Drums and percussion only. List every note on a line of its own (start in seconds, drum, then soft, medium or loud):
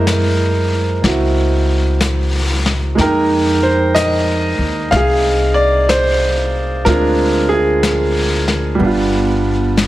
0.07 brush sweep soft
0.07 snare soft
0.07 hi-hat pedal soft
1.04 brush sweep soft
1.04 snare soft
2.01 brush sweep soft
2.01 snare soft
2.01 hi-hat pedal medium
2.66 snare soft
2.98 brush sweep soft
2.98 snare soft
3.96 brush sweep soft
3.96 snare soft
3.96 hi-hat pedal medium
4.92 brush sweep soft
4.92 snare soft
5.89 brush sweep soft
5.89 snare soft
5.89 hi-hat pedal soft
6.86 brush sweep soft
6.86 snare soft
7.83 brush sweep soft
7.83 snare soft
7.83 hi-hat pedal soft
8.48 snare soft
8.80 brush sweep soft
9.77 brush sweep soft
9.77 snare soft
9.77 hi-hat pedal soft